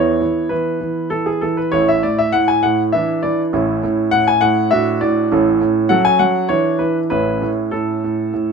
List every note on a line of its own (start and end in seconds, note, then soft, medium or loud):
0.00 0.20 E2 soft
0.00 0.20 E3 soft
0.00 1.69 B3 soft
0.00 1.69 E4 soft
0.00 0.51 C#5 medium
0.21 0.49 E3 soft
0.49 0.79 E3 soft
0.49 1.07 B4 soft
0.81 1.09 E3 soft
1.10 1.41 E3 soft
1.10 1.27 A4 medium
1.26 1.42 G#4 medium
1.41 1.72 E3 soft
1.41 1.58 A4 soft
1.57 1.73 B4 soft
1.72 2.03 A1 soft
1.72 2.03 A2 soft
1.72 2.90 A3 soft
1.72 2.90 E4 soft
1.72 1.88 C#5 medium
1.88 2.04 E5 medium
2.03 2.32 A2 soft
2.03 2.19 D5 medium
2.19 2.34 E5 medium
2.32 2.62 A2 soft
2.32 2.48 F#5 medium
2.48 2.64 G#5 medium
2.63 2.93 A2 soft
2.63 2.81 F#5 medium
2.92 3.22 E3 soft
2.92 3.50 D4 soft
2.92 3.50 E4 soft
2.92 3.20 E5 medium
3.23 3.53 E3 soft
3.23 3.41 D5 medium
3.53 3.82 A1 soft
3.53 3.82 A2 medium
3.53 4.68 C#4 soft
3.53 4.68 E4 soft
3.83 4.11 A2 soft
4.11 4.40 A2 soft
4.11 4.27 F#5 medium
4.28 4.43 G#5 medium
4.41 4.71 A2 soft
4.41 4.68 F#5 medium
4.71 5.00 A2 medium
4.71 5.27 D4 soft
4.71 5.27 F#4 soft
4.71 5.01 E5 medium
5.01 5.30 A2 soft
5.01 5.28 D5 medium
5.32 5.60 A1 soft
5.32 5.60 A2 medium
5.32 5.87 C#4 soft
5.32 5.87 A4 soft
5.61 5.90 A2 soft
5.89 6.18 F#3 medium
5.89 6.46 C#4 soft
5.89 6.46 A4 soft
5.89 6.05 F#5 medium
6.05 6.20 G#5 medium
6.19 6.49 F#3 soft
6.19 6.47 F#5 medium
6.49 6.79 E3 soft
6.49 7.07 D4 soft
6.49 7.07 E4 soft
6.49 6.80 C#5 medium
6.79 7.10 E3 soft
6.79 6.98 B4 medium
7.10 7.42 A1 soft
7.10 7.40 A2 soft
7.10 8.52 C#4 soft
7.10 8.52 E4 soft
7.10 7.48 B4 medium
7.42 7.71 A2 soft
7.71 8.02 A2 soft
7.71 8.52 A4 soft
8.04 8.32 A2 soft
8.34 8.52 A2 soft